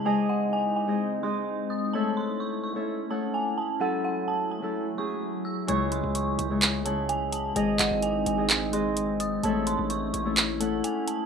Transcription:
<<
  \new Staff \with { instrumentName = "Synth bell" } { \time 4/4 \key gis \phrygian \tempo 4 = 128 gis''8 fis''8 gis''8 gis''8 r8 bis''4 dis'''8 | a''8 bis''8 cis'''8 cis'''8 r8 a''8 gis''8 a''8 | fis''8 fis''8 a''8 a''8 r8 cis'''4 e'''8 | cis'''8 bis''8 cis'''8 cis'''8 r8 a''8 gis''8 a''8 |
gis''8 fis''8 gis''8 gis''8 r8 bis''4 dis'''8 | a''8 bis''8 cis'''8 cis'''8 r8 a''8 gis''8 a''8 | }
  \new Staff \with { instrumentName = "Harp" } { \time 4/4 \key gis \phrygian <gis gis' bis' dis''>4 r8. <gis gis' bis' dis''>8 r16 <gis gis' bis' dis''>4 r8 | <a a' cis'' e''>4 r8. <a a' cis'' e''>8 r16 <a a' cis'' fis''>4 r8 | <fis cis' e' a'>4 r8. <fis cis' e' a'>8 r16 <fis cis' e' gis'>4 r8 | <cis gis e' cis''>4 r8. <cis gis e' cis''>8 r16 <cis gis e' cis''>4 r8 |
<gis gis' bis' dis''>4 r8. <gis gis' bis' dis''>8 r16 <gis gis' bis' dis''>4 r8 | <a a' cis'' e''>4 r8. <a a' cis'' e''>8 r16 <a a' cis'' fis''>4 r8 | }
  \new Staff \with { instrumentName = "Ambient pad" } { \time 4/4 \key gis \phrygian <gis bis dis'>1 | <a cis' e'>1 | <fis a>1 | <cis gis>1 |
<bis dis'>1 | <a cis' e'>1 | }
  \new Staff \with { instrumentName = "808-style bass" } { \clef bass \time 4/4 \key gis \phrygian r1 | r1 | r1 | cis,8. cis,8. cis,2~ cis,8 |
gis,,8 gis,,16 gis,,8. gis,,2~ gis,,8 | a,,8. a,,8. a,,4. r4 | }
  \new DrumStaff \with { instrumentName = "Drums" } \drummode { \time 4/4 r4 r4 r4 r4 | r4 r4 r4 r4 | r4 r4 r4 r4 | hh8 hh8 hh8 hh8 <hc hh>8 hh8 hh8 hh8 |
hh8 <hc hh>8 hh8 hh8 <hc hh>8 hh8 hh8 hh8 | hh8 hh8 hh8 hh8 <hc hh>8 hh8 hh8 hh8 | }
>>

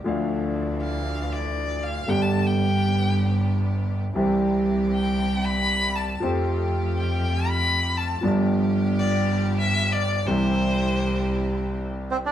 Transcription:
<<
  \new Staff \with { instrumentName = "Violin" } { \time 4/4 \key c \major \tempo 4 = 117 r4. f''4 d''4 f''8 | g''16 a''8 g''2 r4 r16 | r4. g''4 b''4 a''8 | r4. g''4 b''4 a''8 |
r4. d''8~ \tuplet 3/2 { d''8. r16 e''8~ e''8 d''4 } | c''2. r4 | }
  \new Staff \with { instrumentName = "String section" } { \time 4/4 \key c \major <e d'>1 | <b d' g'>1 | <c' e' g'>1 | <a f' g'>1 |
<b f' g'>1 | <c' e' g'>1 | }
  \new Staff \with { instrumentName = "Bandoneon" } { \time 4/4 \key c \major r1 | r1 | r1 | r1 |
r1 | r2. r8 c'16 d'16 | }
  \new Staff \with { instrumentName = "Grand piano" } { \clef bass \time 4/4 \key c \major <d, d f a d' f''>1 | <g,, g, d g b g'>1 | <c, c e g c' g'>1 | <f, f a c' g'>1 |
<g,, g, f b d' g'>1 | <c, c e g c' g'>1 | }
  \new Staff \with { instrumentName = "Double bass" } { \clef bass \time 4/4 \key c \major d,1 | g,,1 | c,1 | f,1 |
g,,1 | c,1 | }
>>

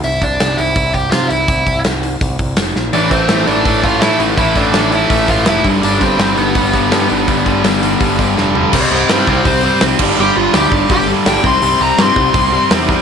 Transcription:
<<
  \new Staff \with { instrumentName = "Lead electric guitar" } { \time 4/4 \key c \major \tempo 4 = 166 <e' e''>8 <d' d''>4 <e' e''>4 <g' g''>8 <f' f''>8 <e' e''>8~ | <e' e''>4 r2. | <d' d''>8 <c' c''>4 <d' d''>4 <f' f''>8 <e' e''>8 r8 | <e' e''>8 <d' d''>4 <e' e''>4 <f' f''>8 <e' e''>8 r8 |
<d' d''>8 <c' c''>4 <b b'>2~ <b b'>8~ | <b b'>2. r4 | <c'' ees''>8 <c'' ees''>8 <e' c''>8 <e' c''>8 c''4 r4 | g'8 f'8 g'4 g'8 r8 g''8 c'''8~ |
c'''8 bes''8 c'''2 r4 | }
  \new Staff \with { instrumentName = "Overdriven electric guitar" } { \clef bass \time 4/4 \key c \major r1 | r1 | <a, e a>8 <a, e a>8 <a, e a>8 <a, e a>8 <a, e a>8 <a, e a>8 <a, e a>8 <a, e a>8 | <a, e a>8 <a, e a>8 <a, e a>8 <a, e a>8 <a, e a>8 <a, e a>8 <a, e a>8 <g, d g>8 |
<g, d g>8 <g, d g>8 <g, d g>8 <g, d g>8 <g, d g>8 <g, d g>8 <g, d g>8 <g, d g>8 | <g, d g>8 <g, d g>8 <g, d g>8 <g, d g>8 <g, d g>8 <g, d g>8 <g, d g>8 <g, d g>8 | <c g c'>8 <c g c'>8 <c g c'>8 <c g c'>8 <c g c'>8 <c g c'>8 <c g c'>8 <g, d g>8 | <g, d g>8 <g, d g>8 <g, d g>8 <g, d g>8 <g, d g>8 <g, d g>8 <g, d g>8 <c g c'>8 |
<c g c'>8 <c g c'>8 <c g c'>8 <c g c'>8 <c g c'>8 <c g c'>8 <c g c'>8 <c g c'>8 | }
  \new Staff \with { instrumentName = "Overdriven electric guitar" } { \clef bass \time 4/4 \key c \major r1 | r1 | <a, e a>8 <a, e a>8 <a, e a>8 <a, e a>8 <a, e a>8 <a, e a>8 <a, e a>8 <a, e a>8 | <a, e a>8 <a, e a>8 <a, e a>8 <a, e a>8 <a, e a>8 <a, e a>8 <a, e a>8 <g, d g>8 |
<g, d g>8 <g, d g>8 <g, d g>8 <g, d g>8 <g, d g>8 <g, d g>8 <g, d g>8 <g, d g>8 | <g, d g>8 <g, d g>8 <g, d g>8 <g, d g>8 <g, d g>8 <g, d g>8 <g, d g>8 <g, d g>8 | <c g c'>8 <c g c'>8 <c g c'>8 <c g c'>8 <c g c'>8 <c g c'>8 <c g c'>8 <g, d g>8 | <g, d g>8 <g, d g>8 <g, d g>8 <g, d g>8 <g, d g>8 <g, d g>8 <g, d g>8 <c g c'>8 |
<c g c'>8 <c g c'>8 <c g c'>8 <c g c'>8 <c g c'>8 <c g c'>8 <c g c'>8 <c g c'>8 | }
  \new Staff \with { instrumentName = "Distorted electric guitar" } { \clef bass \time 4/4 \key c \major r1 | r1 | <a, e a>8 <a, e a>8 <a, e a>8 <a, e a>8 <a, e a>8 <a, e a>8 <a, e a>8 <a, e a>8 | <a, e a>8 <a, e a>8 <a, e a>8 <a, e a>8 <a, e a>8 <a, e a>8 <a, e a>8 <g, d g>8 |
<g, d g>8 <g, d g>8 <g, d g>8 <g, d g>8 <g, d g>8 <g, d g>8 <g, d g>8 <g, d g>8 | <g, d g>8 <g, d g>8 <g, d g>8 <g, d g>8 <g, d g>8 <g, d g>8 <g, d g>8 <g, d g>8 | r1 | r1 |
r1 | }
  \new Staff \with { instrumentName = "Picked electric bass" } { \clef bass \time 4/4 \key c \major c,8 c,8 c,8 c,8 c,8 c,8 c8 c,8 | c,8 c,8 c,4 c,8 c,8 f,,8 bes,,8 | a,,8 a,,8 a,,8 a,,8 a,,8 a,,8 a,8 a,,8 | a,,8 a,,8 a,,4 a,,8 a,,8 f,,8 g,,8 |
g,,8 g,,8 g,,8 g,,8 g,,8 g,,8 g,8 g,,8 | g,,8 g,,8 g,,4 g,,8 g,,8 f,,4 | c,8 c,8 g,8 c,8 c,4 c,8 g,,8 | g,,8 g,,8 d,8 g,,8 g,,4 g,,8 c,8 |
c,8 c,8 g,8 c,8 c,4 e,4 | }
  \new DrumStaff \with { instrumentName = "Drums" } \drummode { \time 4/4 hho8 <hho bd>8 <hho sn>8 hho8 <hho bd>8 <hho bd>8 <hho sn>8 hho8 | <hho bd>8 <hho bd>8 <hho sn>8 hho8 <hho bd>8 <hho bd>8 <hho sn>8 sn8 | hho8 <hho bd>8 <hho sn>8 hho8 <hho bd>8 <hho bd>8 <hho sn>8 hho8 | <hho bd>8 <hho bd>8 <hho sn>8 hho8 <hho bd>8 <hho bd>8 <hho sn>8 <hho bd>8 |
hho8 <hho bd>8 <hho sn>8 hho8 <hho bd>8 <hho bd>8 <hho sn>8 hho8 | <hho bd>8 <hho bd>8 <hho sn>8 hho8 <hho bd>8 <hho bd>8 sn8 tomfh8 | <cymc bd>4 <hho sn>8 bd8 <hho bd>4 <hho sn>8 <cymc bd>8 | r4 <hho sn>8 bd8 <hho bd>4 <hho sn>8 bd8 |
hho4 <hho sn>8 bd8 <hho bd>4 <hho sn>8 bd8 | }
>>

